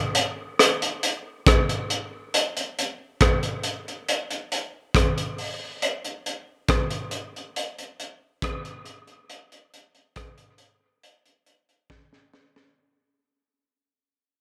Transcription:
0.15 closed hi-hat medium
0.59 cross-stick medium
0.59 closed hi-hat medium
0.82 closed hi-hat medium
1.03 closed hi-hat medium
1.47 kick loud
1.47 cross-stick loud
1.47 closed hi-hat loud
1.69 closed hi-hat soft
1.90 closed hi-hat medium
2.34 closed hi-hat medium
2.57 closed hi-hat soft
2.79 closed hi-hat medium
3.21 kick loud
3.21 cross-stick loud
3.21 closed hi-hat medium
3.43 closed hi-hat medium
3.63 closed hi-hat medium
3.88 closed hi-hat soft
4.09 closed hi-hat medium
4.31 closed hi-hat medium
4.52 closed hi-hat medium
4.95 kick loud
4.95 cross-stick loud
4.95 closed hi-hat loud
5.18 closed hi-hat soft
5.38 open hi-hat soft
5.82 closed hi-hat medium
6.05 closed hi-hat soft
6.26 closed hi-hat medium
6.68 kick loud
6.68 cross-stick loud
6.68 closed hi-hat loud
6.90 closed hi-hat medium
7.11 closed hi-hat medium
7.36 closed hi-hat soft
7.56 closed hi-hat medium
7.79 closed hi-hat soft
8.00 closed hi-hat medium
8.42 kick loud
8.42 cross-stick loud
8.42 closed hi-hat loud
8.65 closed hi-hat soft
8.86 closed hi-hat medium
9.07 closed hi-hat soft
9.30 closed hi-hat medium
9.52 closed hi-hat medium
9.74 closed hi-hat medium
9.95 closed hi-hat soft
10.16 kick loud
10.16 cross-stick loud
10.16 closed hi-hat medium
10.38 closed hi-hat medium
10.58 closed hi-hat medium
11.03 closed hi-hat medium
11.26 closed hi-hat soft
11.46 closed hi-hat medium
11.69 closed hi-hat soft
11.90 kick loud
11.90 snare medium
12.13 snare soft
12.34 snare medium
12.56 snare medium

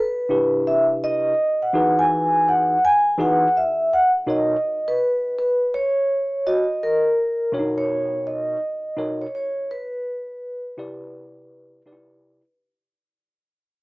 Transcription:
0.00 0.69 B4 medium
0.29 1.32 C3 medium
0.29 1.33 D4 medium
0.29 1.33 E4 medium
0.29 1.33 G4 medium
0.29 1.33 B4 medium
0.67 0.83 E5 loud
1.04 1.63 D#5 loud
1.62 1.99 F#5 medium
1.73 2.77 E3 medium
1.73 2.77 D#4 medium
1.73 2.77 F#4 medium
1.73 2.78 G#4 medium
1.73 2.78 B4 medium
1.99 2.49 G#5 loud
2.48 2.81 F#5 loud
2.85 3.21 G#5 loud
3.18 3.46 E3 medium
3.18 3.47 D#4 medium
3.18 3.47 F#4 medium
3.18 3.47 G#4 medium
3.18 3.47 B4 medium
3.18 3.57 F#5 loud
3.57 3.90 E5 loud
3.93 4.09 F#5 loud
4.27 4.55 B2 medium
4.27 4.55 D#4 medium
4.27 4.55 F#4 medium
4.27 4.55 A#4 medium
4.27 4.56 C#5 medium
4.27 4.89 D#5 loud
4.88 5.33 B4 medium
5.39 5.74 B4 medium
5.74 6.48 C#5 loud
6.47 6.62 F#4 medium
6.47 7.00 D#5 medium
6.83 7.79 A#4 loud
7.52 8.55 B2 medium
7.52 7.61 D4 medium
7.52 8.56 F#4 medium
7.52 8.56 A#4 medium
7.52 8.56 C#5 medium
7.59 8.59 D#4 medium
7.78 8.28 C#5 loud
8.27 9.23 D#5 loud
8.97 9.25 B2 medium
8.97 9.25 D#4 medium
8.97 9.25 F#4 medium
8.97 9.26 A#4 medium
8.97 9.26 C#5 medium
9.22 9.27 C#5 medium
9.35 9.71 C#5 medium
9.71 12.55 B4 loud
10.77 11.81 C3 medium
10.77 11.81 E4 medium
10.77 11.81 G4 medium
10.77 11.81 B4 medium
10.77 11.82 D5 medium
11.85 12.40 C3 medium
11.85 11.94 D#4 medium
11.85 12.41 G4 medium
11.85 12.41 B4 medium
11.85 12.41 D5 medium
11.92 12.43 E4 medium

